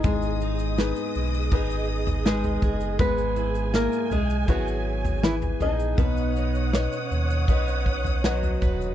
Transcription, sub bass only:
X:1
M:4/4
L:1/16
Q:1/4=80
K:B
V:1 name="Sub bass" clef=bass
G,,,4- G,,, z B,,,2 G,,,6 F,,,2 | G,,,4- G,,, z B,,,2 G,,,6 A,,,2 | B,,,4- B,,, z D,,2 B,,,6 D,,,2 |]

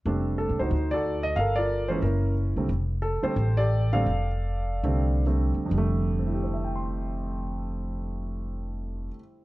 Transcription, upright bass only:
X:1
M:4/4
L:1/8
Q:"Swing" 1/4=164
K:F
V:1 name="Upright bass" clef=bass
F,,,2- (3F,,, C,, _D,, =D,,4 | G,,,4 _G,,,3 C,, | F,,,3 z A,,,4 | F,,,4 C,,3 E,, |
F,,,8- | F,,,8 |]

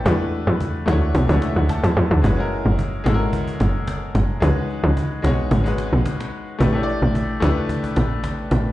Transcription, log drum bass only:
X:1
M:4/4
L:1/16
Q:1/4=110
K:Elyd
V:1 name="Log drum bass" clef=bass
E,,3 E,,3 =D,,2 B,,, C,, z D,, z E,, E,, D,, | F,,,3 F,,,3 G,,,3 z F,,,4 F,,,2 | C,,3 C,,3 B,,,2 G,,,3 A,,, z4 | =A,,,3 A,,,3 C,,3 z A,,,4 A,,,2 |]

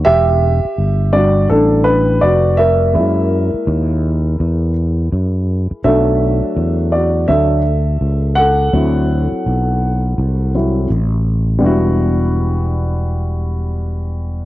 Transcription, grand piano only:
X:1
M:4/4
L:1/8
Q:"Swing 16ths" 1/4=83
K:Em
V:1 name="Grand piano"
[Ge]3 d [DA] [DB] [Fd] [^Ae]- | [^Ae]4- [Ae] z3 | [Ae]3 [Fd] [Ae]3 [Af]- | [Af]6 z2 |
[G,B,DEF]8 |]
V:2 name="Grand piano"
z3 [G,DF]3 z2 | [^G,^A,E]8 | [F,A,D]4 [F,A,D] z3 | [F,CE]4- [F,CE] [F,CE] z2 |
z8 |]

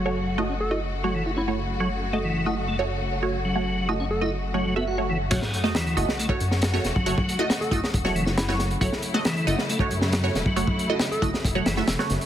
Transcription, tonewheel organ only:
X:1
M:4/4
L:1/16
Q:1/4=137
K:F#dor
V:1 name="Tonewheel organ"
F,3 E C z E z2 F, E, E C z3 | F, z2 A, E,2 E z A, z6 F,- | F,3 E C z E z2 F, F, B, F z E, z | F, z2 A, E,2 E z A, z6 F,- |
F,3 E C z E z2 F, E, E C z3 | F, z2 A, E,2 E z A, z6 F,- | F,3 E C z E z2 F, E, E C z3 |]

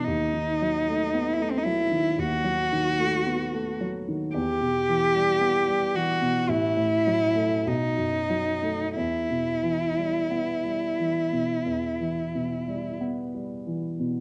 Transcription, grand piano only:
X:1
M:4/4
L:1/16
Q:1/4=54
K:Bphr
V:1 name="Grand piano" clef=bass
^D,, ^D, F, A, B, A, F, D, D,, F, D, A, B, A, F, D, | E,, B,, E, G, B, G, E, B,, A,,, A,, F, A, B,,, F,, F, A, | E,, B,, E, G, B, G, E, B,, E,, E, B,, G, B, G, E, B,, |]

